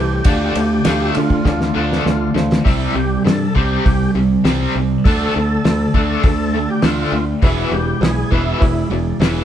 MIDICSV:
0, 0, Header, 1, 7, 480
1, 0, Start_track
1, 0, Tempo, 596421
1, 212, Time_signature, 4, 2, 24, 8
1, 7597, End_track
2, 0, Start_track
2, 0, Title_t, "Grand piano"
2, 0, Program_c, 0, 0
2, 0, Note_on_c, 0, 64, 72
2, 0, Note_on_c, 0, 69, 59
2, 0, Note_on_c, 0, 72, 70
2, 163, Note_off_c, 0, 64, 0
2, 165, Note_off_c, 0, 69, 0
2, 166, Note_off_c, 0, 72, 0
2, 203, Note_on_c, 0, 65, 89
2, 203, Note_on_c, 0, 69, 80
2, 205, Note_on_c, 0, 74, 97
2, 400, Note_off_c, 0, 65, 0
2, 400, Note_off_c, 0, 69, 0
2, 401, Note_off_c, 0, 74, 0
2, 447, Note_on_c, 0, 65, 69
2, 449, Note_on_c, 0, 69, 66
2, 452, Note_on_c, 0, 74, 69
2, 642, Note_off_c, 0, 65, 0
2, 643, Note_off_c, 0, 69, 0
2, 644, Note_off_c, 0, 74, 0
2, 686, Note_on_c, 0, 69, 76
2, 687, Note_on_c, 0, 74, 96
2, 688, Note_on_c, 0, 65, 91
2, 882, Note_off_c, 0, 69, 0
2, 882, Note_off_c, 0, 74, 0
2, 883, Note_off_c, 0, 65, 0
2, 942, Note_on_c, 0, 65, 67
2, 942, Note_on_c, 0, 69, 58
2, 945, Note_on_c, 0, 74, 76
2, 1130, Note_off_c, 0, 65, 0
2, 1130, Note_off_c, 0, 69, 0
2, 1131, Note_off_c, 0, 74, 0
2, 1185, Note_on_c, 0, 69, 67
2, 1187, Note_on_c, 0, 65, 81
2, 1194, Note_on_c, 0, 74, 85
2, 1372, Note_off_c, 0, 69, 0
2, 1373, Note_off_c, 0, 65, 0
2, 1376, Note_off_c, 0, 74, 0
2, 1425, Note_on_c, 0, 65, 65
2, 1427, Note_on_c, 0, 69, 63
2, 1429, Note_on_c, 0, 74, 68
2, 1612, Note_off_c, 0, 65, 0
2, 1613, Note_off_c, 0, 69, 0
2, 1614, Note_off_c, 0, 74, 0
2, 1666, Note_on_c, 0, 65, 68
2, 1669, Note_on_c, 0, 69, 71
2, 1674, Note_on_c, 0, 74, 84
2, 1852, Note_off_c, 0, 65, 0
2, 1854, Note_off_c, 0, 69, 0
2, 1857, Note_off_c, 0, 74, 0
2, 1890, Note_on_c, 0, 65, 74
2, 1896, Note_on_c, 0, 69, 67
2, 1900, Note_on_c, 0, 72, 81
2, 2085, Note_off_c, 0, 65, 0
2, 2088, Note_off_c, 0, 69, 0
2, 2090, Note_off_c, 0, 72, 0
2, 5978, Note_on_c, 0, 64, 89
2, 5978, Note_on_c, 0, 68, 79
2, 5983, Note_on_c, 0, 71, 98
2, 6169, Note_off_c, 0, 64, 0
2, 6169, Note_off_c, 0, 68, 0
2, 6171, Note_off_c, 0, 71, 0
2, 6201, Note_on_c, 0, 64, 70
2, 6208, Note_on_c, 0, 68, 62
2, 6209, Note_on_c, 0, 71, 71
2, 6400, Note_off_c, 0, 64, 0
2, 6404, Note_off_c, 0, 68, 0
2, 6404, Note_off_c, 0, 71, 0
2, 6440, Note_on_c, 0, 68, 69
2, 6443, Note_on_c, 0, 64, 77
2, 6445, Note_on_c, 0, 71, 75
2, 6639, Note_off_c, 0, 68, 0
2, 6641, Note_off_c, 0, 64, 0
2, 6642, Note_off_c, 0, 71, 0
2, 6684, Note_on_c, 0, 68, 68
2, 6686, Note_on_c, 0, 64, 71
2, 6691, Note_on_c, 0, 71, 82
2, 6882, Note_off_c, 0, 64, 0
2, 6882, Note_off_c, 0, 68, 0
2, 6885, Note_off_c, 0, 71, 0
2, 6923, Note_on_c, 0, 71, 96
2, 6925, Note_on_c, 0, 64, 93
2, 6929, Note_on_c, 0, 68, 76
2, 7120, Note_off_c, 0, 71, 0
2, 7122, Note_off_c, 0, 64, 0
2, 7123, Note_off_c, 0, 68, 0
2, 7173, Note_on_c, 0, 64, 71
2, 7174, Note_on_c, 0, 68, 61
2, 7177, Note_on_c, 0, 74, 84
2, 7365, Note_off_c, 0, 64, 0
2, 7366, Note_off_c, 0, 68, 0
2, 7367, Note_off_c, 0, 74, 0
2, 7400, Note_on_c, 0, 64, 84
2, 7404, Note_on_c, 0, 68, 76
2, 7406, Note_on_c, 0, 71, 80
2, 7597, Note_off_c, 0, 64, 0
2, 7597, Note_off_c, 0, 68, 0
2, 7597, Note_off_c, 0, 71, 0
2, 7597, End_track
3, 0, Start_track
3, 0, Title_t, "Tonewheel organ"
3, 0, Program_c, 1, 16
3, 0, Note_on_c, 1, 67, 88
3, 889, Note_off_c, 1, 67, 0
3, 920, Note_on_c, 1, 65, 79
3, 1856, Note_off_c, 1, 65, 0
3, 2134, Note_on_c, 1, 64, 75
3, 2377, Note_on_c, 1, 67, 84
3, 2382, Note_off_c, 1, 64, 0
3, 2600, Note_off_c, 1, 67, 0
3, 2618, Note_on_c, 1, 69, 82
3, 2864, Note_on_c, 1, 67, 82
3, 2865, Note_off_c, 1, 69, 0
3, 3308, Note_off_c, 1, 67, 0
3, 4058, Note_on_c, 1, 69, 100
3, 5010, Note_off_c, 1, 69, 0
3, 5020, Note_on_c, 1, 69, 106
3, 5389, Note_off_c, 1, 69, 0
3, 5395, Note_on_c, 1, 67, 81
3, 5504, Note_on_c, 1, 65, 90
3, 5509, Note_off_c, 1, 67, 0
3, 5835, Note_off_c, 1, 65, 0
3, 5999, Note_on_c, 1, 64, 82
3, 6212, Note_off_c, 1, 64, 0
3, 6219, Note_on_c, 1, 67, 82
3, 6464, Note_off_c, 1, 67, 0
3, 6470, Note_on_c, 1, 68, 78
3, 6686, Note_off_c, 1, 68, 0
3, 6717, Note_on_c, 1, 64, 76
3, 7153, Note_off_c, 1, 64, 0
3, 7597, End_track
4, 0, Start_track
4, 0, Title_t, "Distorted electric guitar"
4, 0, Program_c, 2, 30
4, 5985, Note_on_c, 2, 56, 85
4, 5989, Note_on_c, 2, 59, 96
4, 6206, Note_off_c, 2, 56, 0
4, 6208, Note_off_c, 2, 59, 0
4, 6210, Note_on_c, 2, 52, 74
4, 6217, Note_on_c, 2, 56, 77
4, 6429, Note_off_c, 2, 52, 0
4, 6432, Note_off_c, 2, 56, 0
4, 6454, Note_on_c, 2, 52, 69
4, 6454, Note_on_c, 2, 56, 88
4, 6671, Note_off_c, 2, 52, 0
4, 6671, Note_off_c, 2, 56, 0
4, 6688, Note_on_c, 2, 56, 85
4, 6694, Note_on_c, 2, 59, 101
4, 6917, Note_off_c, 2, 56, 0
4, 6920, Note_off_c, 2, 59, 0
4, 6926, Note_on_c, 2, 52, 66
4, 6931, Note_on_c, 2, 56, 72
4, 7146, Note_off_c, 2, 52, 0
4, 7149, Note_off_c, 2, 56, 0
4, 7161, Note_on_c, 2, 52, 64
4, 7165, Note_on_c, 2, 56, 66
4, 7383, Note_off_c, 2, 52, 0
4, 7385, Note_off_c, 2, 56, 0
4, 7414, Note_on_c, 2, 56, 93
4, 7419, Note_on_c, 2, 59, 82
4, 7597, Note_off_c, 2, 56, 0
4, 7597, Note_off_c, 2, 59, 0
4, 7597, End_track
5, 0, Start_track
5, 0, Title_t, "Overdriven electric guitar"
5, 0, Program_c, 3, 29
5, 0, Note_on_c, 3, 45, 55
5, 0, Note_on_c, 3, 52, 65
5, 187, Note_off_c, 3, 45, 0
5, 189, Note_off_c, 3, 52, 0
5, 201, Note_on_c, 3, 50, 92
5, 208, Note_on_c, 3, 57, 99
5, 213, Note_on_c, 3, 62, 95
5, 432, Note_off_c, 3, 50, 0
5, 436, Note_off_c, 3, 57, 0
5, 438, Note_off_c, 3, 62, 0
5, 447, Note_on_c, 3, 50, 57
5, 451, Note_on_c, 3, 57, 61
5, 666, Note_off_c, 3, 50, 0
5, 668, Note_off_c, 3, 57, 0
5, 687, Note_on_c, 3, 50, 83
5, 688, Note_on_c, 3, 57, 100
5, 691, Note_on_c, 3, 62, 90
5, 916, Note_off_c, 3, 50, 0
5, 916, Note_off_c, 3, 57, 0
5, 918, Note_off_c, 3, 62, 0
5, 929, Note_on_c, 3, 50, 61
5, 932, Note_on_c, 3, 57, 68
5, 1147, Note_off_c, 3, 50, 0
5, 1149, Note_off_c, 3, 57, 0
5, 1164, Note_on_c, 3, 50, 71
5, 1168, Note_on_c, 3, 57, 83
5, 1385, Note_off_c, 3, 50, 0
5, 1387, Note_off_c, 3, 57, 0
5, 1402, Note_on_c, 3, 50, 79
5, 1411, Note_on_c, 3, 57, 87
5, 1413, Note_on_c, 3, 62, 86
5, 1634, Note_off_c, 3, 50, 0
5, 1638, Note_off_c, 3, 57, 0
5, 1639, Note_off_c, 3, 62, 0
5, 1644, Note_on_c, 3, 50, 75
5, 1647, Note_on_c, 3, 57, 73
5, 1865, Note_off_c, 3, 50, 0
5, 1867, Note_off_c, 3, 57, 0
5, 1887, Note_on_c, 3, 57, 69
5, 1888, Note_on_c, 3, 50, 60
5, 2107, Note_off_c, 3, 57, 0
5, 2108, Note_off_c, 3, 50, 0
5, 2126, Note_on_c, 3, 48, 90
5, 2131, Note_on_c, 3, 55, 101
5, 2135, Note_on_c, 3, 60, 94
5, 2357, Note_off_c, 3, 48, 0
5, 2359, Note_off_c, 3, 55, 0
5, 2361, Note_off_c, 3, 60, 0
5, 2371, Note_on_c, 3, 48, 57
5, 2375, Note_on_c, 3, 55, 55
5, 2590, Note_off_c, 3, 48, 0
5, 2591, Note_off_c, 3, 55, 0
5, 2611, Note_on_c, 3, 48, 59
5, 2615, Note_on_c, 3, 55, 84
5, 2830, Note_off_c, 3, 48, 0
5, 2832, Note_off_c, 3, 55, 0
5, 2854, Note_on_c, 3, 48, 79
5, 2855, Note_on_c, 3, 55, 76
5, 2862, Note_on_c, 3, 60, 85
5, 3081, Note_off_c, 3, 48, 0
5, 3081, Note_off_c, 3, 55, 0
5, 3085, Note_off_c, 3, 60, 0
5, 3097, Note_on_c, 3, 48, 71
5, 3103, Note_on_c, 3, 55, 73
5, 3313, Note_off_c, 3, 48, 0
5, 3316, Note_off_c, 3, 55, 0
5, 3341, Note_on_c, 3, 48, 60
5, 3345, Note_on_c, 3, 55, 69
5, 3555, Note_off_c, 3, 48, 0
5, 3557, Note_off_c, 3, 55, 0
5, 3573, Note_on_c, 3, 48, 80
5, 3581, Note_on_c, 3, 55, 94
5, 3581, Note_on_c, 3, 60, 88
5, 3801, Note_off_c, 3, 48, 0
5, 3804, Note_off_c, 3, 55, 0
5, 3805, Note_off_c, 3, 60, 0
5, 3820, Note_on_c, 3, 48, 60
5, 3824, Note_on_c, 3, 55, 62
5, 4035, Note_off_c, 3, 48, 0
5, 4036, Note_off_c, 3, 55, 0
5, 4064, Note_on_c, 3, 50, 89
5, 4069, Note_on_c, 3, 57, 84
5, 4074, Note_on_c, 3, 62, 100
5, 4286, Note_off_c, 3, 50, 0
5, 4289, Note_off_c, 3, 57, 0
5, 4291, Note_off_c, 3, 62, 0
5, 4307, Note_on_c, 3, 50, 55
5, 4309, Note_on_c, 3, 57, 66
5, 4518, Note_off_c, 3, 50, 0
5, 4519, Note_off_c, 3, 57, 0
5, 4546, Note_on_c, 3, 50, 77
5, 4550, Note_on_c, 3, 57, 74
5, 4758, Note_off_c, 3, 50, 0
5, 4760, Note_off_c, 3, 57, 0
5, 4782, Note_on_c, 3, 50, 82
5, 4786, Note_on_c, 3, 57, 89
5, 4792, Note_on_c, 3, 62, 80
5, 5005, Note_off_c, 3, 50, 0
5, 5007, Note_off_c, 3, 57, 0
5, 5010, Note_off_c, 3, 62, 0
5, 5017, Note_on_c, 3, 50, 71
5, 5022, Note_on_c, 3, 57, 71
5, 5233, Note_off_c, 3, 50, 0
5, 5236, Note_off_c, 3, 57, 0
5, 5262, Note_on_c, 3, 50, 63
5, 5266, Note_on_c, 3, 57, 64
5, 5475, Note_off_c, 3, 50, 0
5, 5477, Note_off_c, 3, 57, 0
5, 5491, Note_on_c, 3, 50, 80
5, 5495, Note_on_c, 3, 57, 92
5, 5506, Note_on_c, 3, 62, 92
5, 5719, Note_off_c, 3, 50, 0
5, 5721, Note_off_c, 3, 57, 0
5, 5727, Note_off_c, 3, 62, 0
5, 5733, Note_on_c, 3, 57, 67
5, 5735, Note_on_c, 3, 50, 63
5, 5951, Note_off_c, 3, 57, 0
5, 5952, Note_off_c, 3, 50, 0
5, 5968, Note_on_c, 3, 40, 87
5, 5973, Note_on_c, 3, 47, 98
5, 5977, Note_on_c, 3, 52, 103
5, 6198, Note_off_c, 3, 40, 0
5, 6200, Note_off_c, 3, 47, 0
5, 6202, Note_off_c, 3, 52, 0
5, 6213, Note_on_c, 3, 40, 63
5, 6216, Note_on_c, 3, 47, 66
5, 6430, Note_off_c, 3, 40, 0
5, 6432, Note_off_c, 3, 47, 0
5, 6454, Note_on_c, 3, 40, 77
5, 6454, Note_on_c, 3, 47, 86
5, 6671, Note_off_c, 3, 40, 0
5, 6671, Note_off_c, 3, 47, 0
5, 6689, Note_on_c, 3, 40, 84
5, 6696, Note_on_c, 3, 47, 93
5, 6698, Note_on_c, 3, 52, 95
5, 6918, Note_off_c, 3, 40, 0
5, 6921, Note_off_c, 3, 47, 0
5, 6922, Note_off_c, 3, 52, 0
5, 6927, Note_on_c, 3, 40, 78
5, 6931, Note_on_c, 3, 47, 89
5, 7146, Note_off_c, 3, 40, 0
5, 7149, Note_off_c, 3, 47, 0
5, 7171, Note_on_c, 3, 40, 69
5, 7173, Note_on_c, 3, 47, 77
5, 7388, Note_off_c, 3, 40, 0
5, 7389, Note_off_c, 3, 47, 0
5, 7408, Note_on_c, 3, 40, 84
5, 7414, Note_on_c, 3, 47, 101
5, 7416, Note_on_c, 3, 52, 93
5, 7597, Note_off_c, 3, 40, 0
5, 7597, Note_off_c, 3, 47, 0
5, 7597, Note_off_c, 3, 52, 0
5, 7597, End_track
6, 0, Start_track
6, 0, Title_t, "Fingered electric bass"
6, 0, Program_c, 4, 33
6, 0, Note_on_c, 4, 36, 62
6, 160, Note_off_c, 4, 36, 0
6, 202, Note_on_c, 4, 38, 86
6, 396, Note_off_c, 4, 38, 0
6, 447, Note_on_c, 4, 38, 80
6, 639, Note_off_c, 4, 38, 0
6, 694, Note_on_c, 4, 38, 89
6, 883, Note_off_c, 4, 38, 0
6, 940, Note_on_c, 4, 50, 81
6, 1127, Note_off_c, 4, 50, 0
6, 1171, Note_on_c, 4, 38, 87
6, 1362, Note_off_c, 4, 38, 0
6, 1417, Note_on_c, 4, 38, 80
6, 1606, Note_off_c, 4, 38, 0
6, 1653, Note_on_c, 4, 38, 80
6, 1844, Note_off_c, 4, 38, 0
6, 1891, Note_on_c, 4, 38, 70
6, 2082, Note_off_c, 4, 38, 0
6, 2141, Note_on_c, 4, 36, 78
6, 2306, Note_off_c, 4, 36, 0
6, 2375, Note_on_c, 4, 36, 75
6, 2543, Note_off_c, 4, 36, 0
6, 2620, Note_on_c, 4, 43, 76
6, 2786, Note_off_c, 4, 43, 0
6, 2863, Note_on_c, 4, 36, 75
6, 3028, Note_off_c, 4, 36, 0
6, 3104, Note_on_c, 4, 36, 90
6, 3269, Note_off_c, 4, 36, 0
6, 3336, Note_on_c, 4, 36, 73
6, 3504, Note_off_c, 4, 36, 0
6, 3578, Note_on_c, 4, 36, 91
6, 3745, Note_off_c, 4, 36, 0
6, 3826, Note_on_c, 4, 36, 69
6, 3990, Note_off_c, 4, 36, 0
6, 4067, Note_on_c, 4, 38, 79
6, 4231, Note_off_c, 4, 38, 0
6, 4313, Note_on_c, 4, 38, 81
6, 4475, Note_off_c, 4, 38, 0
6, 4551, Note_on_c, 4, 38, 90
6, 4713, Note_off_c, 4, 38, 0
6, 4785, Note_on_c, 4, 38, 77
6, 4949, Note_off_c, 4, 38, 0
6, 5021, Note_on_c, 4, 38, 93
6, 5354, Note_off_c, 4, 38, 0
6, 5501, Note_on_c, 4, 38, 78
6, 5667, Note_off_c, 4, 38, 0
6, 5731, Note_on_c, 4, 38, 80
6, 5900, Note_off_c, 4, 38, 0
6, 5978, Note_on_c, 4, 28, 85
6, 6145, Note_off_c, 4, 28, 0
6, 6210, Note_on_c, 4, 28, 78
6, 6379, Note_off_c, 4, 28, 0
6, 6446, Note_on_c, 4, 35, 92
6, 6617, Note_off_c, 4, 35, 0
6, 6695, Note_on_c, 4, 28, 80
6, 6862, Note_off_c, 4, 28, 0
6, 6936, Note_on_c, 4, 28, 102
6, 7103, Note_off_c, 4, 28, 0
6, 7169, Note_on_c, 4, 28, 83
6, 7337, Note_off_c, 4, 28, 0
6, 7401, Note_on_c, 4, 28, 92
6, 7572, Note_off_c, 4, 28, 0
6, 7597, End_track
7, 0, Start_track
7, 0, Title_t, "Drums"
7, 197, Note_on_c, 9, 51, 86
7, 204, Note_on_c, 9, 36, 113
7, 277, Note_off_c, 9, 51, 0
7, 285, Note_off_c, 9, 36, 0
7, 446, Note_on_c, 9, 51, 74
7, 526, Note_off_c, 9, 51, 0
7, 682, Note_on_c, 9, 51, 87
7, 684, Note_on_c, 9, 38, 98
7, 762, Note_off_c, 9, 51, 0
7, 765, Note_off_c, 9, 38, 0
7, 923, Note_on_c, 9, 51, 66
7, 1003, Note_off_c, 9, 51, 0
7, 1048, Note_on_c, 9, 36, 81
7, 1129, Note_off_c, 9, 36, 0
7, 1170, Note_on_c, 9, 36, 80
7, 1171, Note_on_c, 9, 38, 57
7, 1250, Note_off_c, 9, 36, 0
7, 1251, Note_off_c, 9, 38, 0
7, 1294, Note_on_c, 9, 38, 56
7, 1374, Note_off_c, 9, 38, 0
7, 1547, Note_on_c, 9, 38, 64
7, 1628, Note_off_c, 9, 38, 0
7, 1660, Note_on_c, 9, 38, 68
7, 1740, Note_off_c, 9, 38, 0
7, 1901, Note_on_c, 9, 38, 80
7, 1982, Note_off_c, 9, 38, 0
7, 2030, Note_on_c, 9, 38, 91
7, 2110, Note_off_c, 9, 38, 0
7, 2139, Note_on_c, 9, 36, 99
7, 2146, Note_on_c, 9, 46, 48
7, 2219, Note_off_c, 9, 36, 0
7, 2226, Note_off_c, 9, 46, 0
7, 2630, Note_on_c, 9, 46, 48
7, 2632, Note_on_c, 9, 38, 99
7, 2710, Note_off_c, 9, 46, 0
7, 2712, Note_off_c, 9, 38, 0
7, 2864, Note_on_c, 9, 36, 70
7, 2945, Note_off_c, 9, 36, 0
7, 3106, Note_on_c, 9, 36, 97
7, 3106, Note_on_c, 9, 46, 50
7, 3186, Note_off_c, 9, 46, 0
7, 3187, Note_off_c, 9, 36, 0
7, 3581, Note_on_c, 9, 46, 44
7, 3583, Note_on_c, 9, 38, 90
7, 3661, Note_off_c, 9, 46, 0
7, 3664, Note_off_c, 9, 38, 0
7, 4068, Note_on_c, 9, 36, 105
7, 4069, Note_on_c, 9, 46, 52
7, 4148, Note_off_c, 9, 36, 0
7, 4149, Note_off_c, 9, 46, 0
7, 4547, Note_on_c, 9, 46, 52
7, 4550, Note_on_c, 9, 38, 101
7, 4628, Note_off_c, 9, 46, 0
7, 4630, Note_off_c, 9, 38, 0
7, 4782, Note_on_c, 9, 36, 82
7, 4863, Note_off_c, 9, 36, 0
7, 5016, Note_on_c, 9, 46, 58
7, 5021, Note_on_c, 9, 36, 106
7, 5096, Note_off_c, 9, 46, 0
7, 5101, Note_off_c, 9, 36, 0
7, 5490, Note_on_c, 9, 46, 49
7, 5493, Note_on_c, 9, 38, 97
7, 5571, Note_off_c, 9, 46, 0
7, 5573, Note_off_c, 9, 38, 0
7, 5973, Note_on_c, 9, 46, 48
7, 5976, Note_on_c, 9, 36, 105
7, 6054, Note_off_c, 9, 46, 0
7, 6057, Note_off_c, 9, 36, 0
7, 6460, Note_on_c, 9, 46, 47
7, 6463, Note_on_c, 9, 38, 98
7, 6541, Note_off_c, 9, 46, 0
7, 6543, Note_off_c, 9, 38, 0
7, 6696, Note_on_c, 9, 36, 70
7, 6777, Note_off_c, 9, 36, 0
7, 6936, Note_on_c, 9, 36, 95
7, 6937, Note_on_c, 9, 46, 49
7, 7016, Note_off_c, 9, 36, 0
7, 7018, Note_off_c, 9, 46, 0
7, 7416, Note_on_c, 9, 46, 48
7, 7419, Note_on_c, 9, 38, 105
7, 7497, Note_off_c, 9, 46, 0
7, 7499, Note_off_c, 9, 38, 0
7, 7597, End_track
0, 0, End_of_file